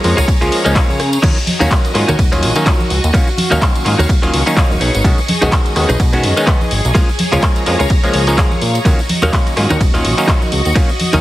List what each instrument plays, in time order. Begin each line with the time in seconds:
Already playing: string machine G#4 C#5 A#5
0.04 analog synth bass F2, clav F3 G#3 A#3 C#4 F4, open hi-hat
0.17 analog synth bass C#2, clean electric guitar F4 G#4 A#4 C#5, closed hi-hat, tambourine, low conga
0.28 kick, ride, tambourine
0.41 analog synth bass C#2, clav F3 G#3 A#3 C#4 F4, muted clean electric guitar stroke, closed hi-hat, tambourine
0.52 muted clean electric guitar stroke, open hi-hat
0.64 analog synth bass C#2, clav F3 G#3 A#3 C#4 D#4, muted clean electric guitar stroke, closed hi-hat, tambourine
0.75 clav F3 G#3 A#3 C#4 F4, clean electric guitar F4 G#4 A#4 C#5, kick, clap, ride, tambourine
0.89 analog synth bass C#3, tambourine, high conga
1.00 cross-stick, open hi-hat
1.13 closed hi-hat, tambourine
1.22 analog synth bass D#2, clav D#3 F#3 A#3 C#4 F4, clean electric guitar D#4 F#4 A#4 C#5, string machine F#4 D#5 C#6, kick, crash, ride
1.38 tambourine
1.47 muted clean electric guitar stroke, open hi-hat, high conga
1.59 analog synth bass D#2, clav D#3 F#3 A#3 C#4 F5, clean electric guitar D#4 F#4 A#4 C#5, closed hi-hat, tambourine, low conga
1.71 kick, clap, ride, tambourine
1.84 muted clean electric guitar stroke, closed hi-hat, tambourine
1.94 analog synth bass G#2, clav D#3 F#3 A#3 C#4 F4, cross-stick, open hi-hat
2.08 analog synth bass D#2, clean electric guitar D#4 F#4 A#4 C#5, closed hi-hat, tambourine, low conga
2.19 analog synth bass D#1, kick, ride, tambourine
2.32 clav D#3 F#3 A#3 C#4 F4, muted clean electric guitar stroke, closed hi-hat, tambourine, low conga
2.42 analog synth bass A#1, muted clean electric guitar stroke, open hi-hat
2.55 clav D#3 F#3 A#3 C#4 D#4, muted clean electric guitar stroke, closed hi-hat, tambourine
2.66 clav D#3 F#3 C#4 F4, clean electric guitar D#4 F#4 A#4 C#5, kick, clap, ride, tambourine
2.80 tambourine, high conga
2.90 analog synth bass C#2, open hi-hat
3.04 analog synth bass D#2, closed hi-hat, tambourine
3.14 clav D#3 F#3 A#3 C#4 F4, clean electric guitar D#4 F#4 A#4 C#5, string machine F5, kick, ride, tambourine
3.27 tambourine
3.37 muted clean electric guitar stroke, open hi-hat, high conga
3.50 analog synth bass D#2, clav D#3 F#3 A#3 C#4 F5, clean electric guitar D#4 F#4 A#4 C#5, closed hi-hat, tambourine, low conga
3.62 kick, clap, ride, tambourine
3.75 muted clean electric guitar stroke, closed hi-hat, tambourine
3.85 analog synth bass G#2, clav D#3 F#3 A#3 C#4 F4, open hi-hat
3.99 analog synth bass D#2, clean electric guitar D#4 F#4 A#4 C#5, closed hi-hat, tambourine, low conga
4.09 kick, ride, tambourine
4.22 analog synth bass D#1, clav D#3 F#3 A#3 C#4 F4, muted clean electric guitar stroke, closed hi-hat, tambourine
4.33 analog synth bass C#2, muted clean electric guitar stroke, open hi-hat
4.46 clav D#3 F#3 A#3 C#4 D#4, muted clean electric guitar stroke, closed hi-hat, tambourine
4.56 clav D#3, clean electric guitar D#4 F#4 A#4 D#5, kick, clap, ride
4.71 analog synth bass D#1, tambourine, high conga
4.80 analog synth bass B1, clean electric guitar D#4 G#4 B4 C#5, string machine G#4 D#5, open hi-hat
4.95 analog synth bass G#1, closed hi-hat, tambourine
5.04 analog synth bass B1, clav D#3 G#3 B3 C#4 F#4, kick, ride, tambourine
5.18 tambourine
5.28 muted clean electric guitar stroke, open hi-hat, high conga
5.41 analog synth bass B1, clav D#3 G#3 B3 C#4 F#4, clean electric guitar D#4 G#4 B4 D#5, closed hi-hat, tambourine, low conga
5.52 kick, clap, ride
5.65 muted clean electric guitar stroke, closed hi-hat, tambourine
5.76 analog synth bass D#2, clav D#3 G#3 B3 C#4 F#4, cross-stick, open hi-hat
5.89 analog synth bass B1, clean electric guitar D#4 G#4 B4 D#5, closed hi-hat, tambourine, low conga
6.00 analog synth bass B2, kick, ride, tambourine
6.13 clav D#3 G#3 B3 C#4 F#4, muted clean electric guitar stroke, closed hi-hat, tambourine, low conga
6.23 analog synth bass F#2, muted clean electric guitar stroke, open hi-hat
6.36 clav D#3 G#3 B3 C#4 D#4, muted clean electric guitar stroke, closed hi-hat, tambourine
6.46 clav D#3 G#3 B3, clean electric guitar D#4 G#4 B4 D#5, kick, clap, ride
6.61 tambourine, high conga
6.71 analog synth bass G#1, open hi-hat
6.85 analog synth bass B1, closed hi-hat, tambourine
6.94 clav F3 G#3 A#3 C#4 F4, clean electric guitar F4 G#4 A#4 C#5, string machine C#5 A#5, kick, ride, tambourine
7.09 tambourine
7.18 muted clean electric guitar stroke, open hi-hat, high conga
7.32 analog synth bass C#2, clav F3 G#3 A#3 C#4 F4, clean electric guitar F4 G#4 A#4 C#5, closed hi-hat, tambourine, low conga
7.43 kick, cross-stick, clap, ride
7.55 muted clean electric guitar stroke, closed hi-hat, tambourine
7.66 analog synth bass F2, clav F3 G#3 A#3 C#4 F4, open hi-hat
7.79 analog synth bass C#2, clean electric guitar F4 G#4 A#4 C#5, closed hi-hat, tambourine, low conga
7.90 kick, ride, tambourine
8.04 analog synth bass C#2, clav F3 G#3 A#3 C#4 F4, muted clean electric guitar stroke, closed hi-hat, tambourine
8.14 analog synth bass C#2, clean electric guitar C#5, muted clean electric guitar stroke, open hi-hat
8.27 clav F3 G#3 A#3 C#4 D#4, muted clean electric guitar stroke, closed hi-hat, tambourine
8.37 clav F3 G#3, clean electric guitar F4 G#4 A#4 C#5 F5, kick, clap, ride
8.51 tambourine, high conga
8.61 analog synth bass A#2, open hi-hat
8.75 closed hi-hat, tambourine
8.85 analog synth bass D#2, clav D#3 F#3 A#3 C#4 F4, clean electric guitar D#4 F#4 A#4 C#5, string machine F#4 D#5 C#6, kick, ride, tambourine
8.99 tambourine
9.09 muted clean electric guitar stroke, open hi-hat, high conga
9.22 analog synth bass D#2, clav D#3 F#3 A#3 C#4 F5, clean electric guitar D#4 F#4 A#4 C#5, closed hi-hat, tambourine, low conga
9.33 kick, clap, ride
9.46 muted clean electric guitar stroke, closed hi-hat, tambourine
9.56 analog synth bass G#2, clav D#3 F#3 A#3 C#4 F4, cross-stick, open hi-hat
9.70 analog synth bass D#2, clean electric guitar D#4 F#4 A#4 C#5, closed hi-hat, tambourine, low conga
9.80 analog synth bass D#1, kick, ride, tambourine
9.94 clav D#3 F#3 A#3 C#4 F4, muted clean electric guitar stroke, closed hi-hat, tambourine, low conga
10.04 analog synth bass A#1, muted clean electric guitar stroke, open hi-hat
10.17 clav D#3 F#3 A#3 C#4 D#4, muted clean electric guitar stroke, closed hi-hat, tambourine
10.28 clean electric guitar D#4 F#4 A#4 D#5, kick, clap, ride
10.42 tambourine, high conga
10.52 analog synth bass C#2, open hi-hat
10.65 analog synth bass D#2, closed hi-hat, tambourine
10.75 clav D#3 F#3 A#3 C#4 F4, clean electric guitar D#4 F#4 A#4 C#5, kick, ride, tambourine
10.89 tambourine
10.99 muted clean electric guitar stroke, open hi-hat, high conga
11.13 analog synth bass D#2, clav D#3 F#3 A#3 C#4 F5, clean electric guitar D#4 F#4 A#4 D#5, closed hi-hat, tambourine, low conga